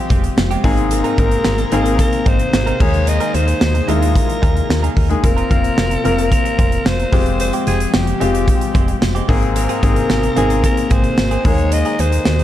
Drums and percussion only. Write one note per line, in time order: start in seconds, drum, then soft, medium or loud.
0.10 kick loud
0.10 closed hi-hat medium
0.24 closed hi-hat soft
0.38 snare loud
0.38 tambourine medium
0.51 closed hi-hat medium
0.64 kick loud
0.64 open hi-hat medium
0.77 closed hi-hat soft
0.91 closed hi-hat loud
1.04 closed hi-hat medium
1.18 kick medium
1.18 closed hi-hat medium
1.31 closed hi-hat medium
1.44 snare loud
1.44 tambourine medium
1.58 closed hi-hat medium
1.72 closed hi-hat medium
1.85 closed hi-hat medium
1.99 kick medium
1.99 closed hi-hat medium
2.12 closed hi-hat medium
2.26 kick loud
2.26 closed hi-hat medium
2.39 closed hi-hat medium
2.53 snare loud
2.53 tambourine medium
2.67 closed hi-hat medium
2.80 kick loud
2.80 crash medium
2.94 closed hi-hat soft
3.07 closed hi-hat loud
3.20 closed hi-hat medium
3.34 closed hi-hat medium
3.48 closed hi-hat medium
3.61 snare loud
3.61 tambourine medium
3.75 closed hi-hat medium
3.89 closed hi-hat medium
4.02 closed hi-hat medium
4.15 kick medium
4.15 closed hi-hat medium
4.29 closed hi-hat medium
4.43 kick loud
4.43 closed hi-hat medium
4.57 closed hi-hat soft
4.70 snare loud
4.70 tambourine medium
4.84 closed hi-hat medium
4.97 kick medium
4.97 open hi-hat medium
5.10 closed hi-hat soft
5.24 kick loud
5.24 closed hi-hat loud
5.38 closed hi-hat medium
5.51 kick medium
5.51 closed hi-hat medium
5.64 closed hi-hat medium
5.78 snare loud
5.78 tambourine medium
5.91 closed hi-hat medium
6.05 closed hi-hat medium
6.19 closed hi-hat medium
6.32 kick medium
6.32 closed hi-hat loud
6.45 closed hi-hat medium
6.59 kick loud
6.59 closed hi-hat medium
6.72 closed hi-hat soft
6.86 snare loud
6.86 tambourine medium
6.99 closed hi-hat medium
7.13 kick loud
7.13 open hi-hat medium
7.26 closed hi-hat medium
7.40 closed hi-hat loud
7.53 closed hi-hat medium
7.67 closed hi-hat medium
7.80 closed hi-hat medium
7.94 snare loud
7.94 tambourine medium
8.07 closed hi-hat medium
8.21 closed hi-hat medium
8.35 closed hi-hat medium
8.48 kick medium
8.48 closed hi-hat medium
8.61 closed hi-hat medium
8.75 kick loud
8.75 closed hi-hat medium
8.88 closed hi-hat soft
9.02 snare loud
9.02 tambourine medium
9.16 closed hi-hat medium
9.29 kick loud
9.29 open hi-hat medium
9.43 closed hi-hat soft
9.56 closed hi-hat loud
9.69 closed hi-hat soft
9.83 kick medium
9.83 closed hi-hat medium
9.96 closed hi-hat medium
10.10 snare loud
10.10 tambourine medium
10.23 closed hi-hat medium
10.37 closed hi-hat medium
10.50 closed hi-hat medium
10.64 kick medium
10.64 closed hi-hat medium
10.77 closed hi-hat medium
10.91 kick loud
10.91 closed hi-hat medium
11.04 closed hi-hat soft
11.18 snare loud
11.18 tambourine medium
11.31 closed hi-hat medium
11.45 kick loud
11.45 open hi-hat medium
11.58 closed hi-hat soft
11.72 closed hi-hat loud
11.85 closed hi-hat soft
11.99 closed hi-hat medium
12.12 closed hi-hat medium
12.25 snare loud
12.25 tambourine medium
12.39 closed hi-hat medium